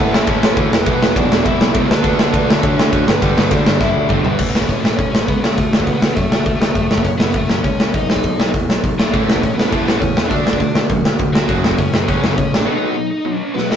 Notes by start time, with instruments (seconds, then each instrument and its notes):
Already playing: overdriven electric guitar A2 E3 A3
0.00 overdriven electric guitar A2, lead electric guitar B3 B4
0.12 picked electric bass A1, lead electric guitar A3 A4, snare
0.27 picked electric bass A1, overdriven electric guitar A2 E3 A3, lead electric guitar C#4 C#5, kick, ride
0.42 picked electric bass A1, snare
0.57 picked electric bass D2, overdriven electric guitar A2 E3 A3, kick, ride
0.70 picked electric bass E1, overdriven electric guitar E2 B2 E3, lead electric guitar B3 B4, snare
0.86 picked electric bass E1, overdriven electric guitar E2 B2 E3, kick, ride
1.01 picked electric bass E1, snare
1.16 picked electric bass B1, overdriven electric guitar E2 B2 E3, lead electric guitar D4 D5, kick, ride
1.30 picked electric bass E1, snare
1.43 picked electric bass E1, overdriven electric guitar E2 B2 E3, lead electric guitar E4 E5, kick, ride
1.60 picked electric bass B1, snare
1.73 picked electric bass C#2, overdriven electric guitar E2 B2 E3, lead electric guitar A3 A4, kick, ride
1.88 picked electric bass D2, overdriven electric guitar D3 A3 D4, lead electric guitar B3 B4, snare
2.02 picked electric bass D2, overdriven electric guitar D3 A3 D4, kick, ride
2.19 snare
2.33 picked electric bass D2, overdriven electric guitar D3 A3 D4, lead electric guitar B3 B4, kick, ride
2.48 picked electric bass D2, lead electric guitar A3 A4, snare
2.61 picked electric bass D2, overdriven electric guitar D3 A3 D4, lead electric guitar C#4 C#5, kick, ride
2.78 picked electric bass D2, snare
2.92 picked electric bass D2, overdriven electric guitar D3 A3 D4, kick, ride
3.05 picked electric bass G1, overdriven electric guitar G2 D3 G3, lead electric guitar B3 B4, snare
3.21 picked electric bass G1, overdriven electric guitar G2 D3 G3, kick, ride
3.37 picked electric bass G1, snare
3.51 picked electric bass D2, overdriven electric guitar G2 D3 G3, lead electric guitar D4 D5, kick, ride
3.66 picked electric bass G1, snare
3.79 picked electric bass G1, overdriven electric guitar G2 D3 G3, lead electric guitar E4 E5, kick, snare
3.94 picked electric bass D2
4.09 picked electric bass G1, overdriven electric guitar G2 D3 G3, lead electric guitar A3 A4, kick, mid tom
4.24 picked electric bass G1, lead electric guitar E3 B3 E4 B4, floor tom
4.39 picked electric bass A1, kick, crash
4.54 picked electric bass A1, snare
4.62 kick
4.66 picked electric bass A1, lead electric guitar C#4 C#5, kick, open hi-hat
4.80 picked electric bass A1, lead electric guitar E3 E4
4.85 snare
4.95 picked electric bass A1, lead electric guitar C#4 C#5, kick, open hi-hat
5.10 picked electric bass A1, lead electric guitar C#4 C#5
5.15 snare
5.27 picked electric bass C#2, lead electric guitar B3 B4, kick, open hi-hat
5.40 lead electric guitar A3 A4
5.44 snare
5.54 picked electric bass D2, lead electric guitar A3 A4, kick, open hi-hat
5.71 picked electric bass D2, snare
5.80 lead electric guitar B3, kick
5.85 picked electric bass D2, lead electric guitar B4, kick, open hi-hat
5.97 picked electric bass D2, lead electric guitar B3 B4
6.02 snare
6.13 picked electric bass F#2, lead electric guitar A3, kick, open hi-hat
6.17 lead electric guitar A4
6.29 picked electric bass D2, snare
6.45 picked electric bass D2, kick, open hi-hat
6.56 picked electric bass D2, lead electric guitar A3 A4
6.62 snare
6.75 picked electric bass F#1, kick, open hi-hat
6.90 picked electric bass F#1, snare
6.98 kick
7.03 picked electric bass F#1, lead electric guitar C#4 C#5, kick, open hi-hat
7.18 picked electric bass F#1, lead electric guitar B3 B4, snare
7.33 picked electric bass F#1, lead electric guitar A3, kick, open hi-hat
7.37 lead electric guitar A4
7.48 picked electric bass F#1, lead electric guitar C#4, snare
7.52 lead electric guitar C#5
7.64 picked electric bass C#2, lead electric guitar C#4, kick, open hi-hat
7.68 lead electric guitar C#5
7.80 snare
7.94 picked electric bass B1, lead electric guitar D#4 D#5, kick, open hi-hat
8.07 picked electric bass B1, snare
8.16 kick
8.23 picked electric bass B1, kick, open hi-hat
8.38 picked electric bass B1, snare
8.54 picked electric bass E2, kick, open hi-hat
8.68 picked electric bass B1, snare
8.84 picked electric bass B1, kick, open hi-hat
8.97 picked electric bass B1, lead electric guitar A3, snare
9.01 lead electric guitar A4
9.12 picked electric bass A1, overdriven electric guitar A2 E3 A3, kick, open hi-hat
9.27 picked electric bass A1, lead electric guitar B3 B4, snare
9.36 lead electric guitar C#4, kick
9.42 picked electric bass A1, overdriven electric guitar A2 E3, lead electric guitar C#5, kick, open hi-hat
9.54 picked electric bass A1, lead electric guitar B3 B4
9.59 snare
9.69 picked electric bass A1, overdriven electric guitar A2 E3 A3, lead electric guitar A3, kick, open hi-hat
9.74 lead electric guitar A4
9.83 picked electric bass A1, lead electric guitar B3
9.88 lead electric guitar B4, snare
9.96 lead electric guitar C#4
10.01 picked electric bass E2, overdriven electric guitar A2 E3, lead electric guitar C#5, kick, open hi-hat
10.17 snare
10.25 lead electric guitar D4
10.30 picked electric bass D2, overdriven electric guitar D3 A3 D4, lead electric guitar D5, kick, open hi-hat
10.46 picked electric bass D2, snare
10.53 kick
10.60 picked electric bass D2, overdriven electric guitar D3 A3, kick, open hi-hat
10.74 picked electric bass D2, snare
10.89 picked electric bass F#2, overdriven electric guitar D3 A3, kick, open hi-hat
11.04 picked electric bass D2, snare
11.19 picked electric bass D2, overdriven electric guitar D3 A3, kick, open hi-hat
11.33 picked electric bass D2, lead electric guitar F#3 F#4, snare
11.48 picked electric bass F#1, overdriven electric guitar F#2 C#3 F#3, kick, open hi-hat
11.63 picked electric bass F#1, snare
11.71 kick
11.78 picked electric bass F#1, overdriven electric guitar F#2 C#3, lead electric guitar C#4 C#5, kick, open hi-hat
11.92 picked electric bass F#1, lead electric guitar E3 E4, snare
12.07 picked electric bass F#1, overdriven electric guitar F#2 C#3 F#3, lead electric guitar C#4 C#5, kick, open hi-hat
12.21 picked electric bass F#1, lead electric guitar C#4 C#5, snare
12.31 lead electric guitar A3 A4
12.35 picked electric bass A1, overdriven electric guitar F#2 C#3, lead electric guitar C#4 C#5, kick, open hi-hat
12.54 lead electric guitar D4, snare
12.59 lead electric guitar D5
12.65 overdriven electric guitar B2 F#3 B3, lead electric guitar D#4 D#5
12.96 overdriven electric guitar B2 F#3
13.25 overdriven electric guitar B2 F#3
13.35 lead electric guitar C#4
13.54 overdriven electric guitar B2 F#3, lead electric guitar B3 B4, snare
13.69 lead electric guitar E3 D#4 E4 D#5, snare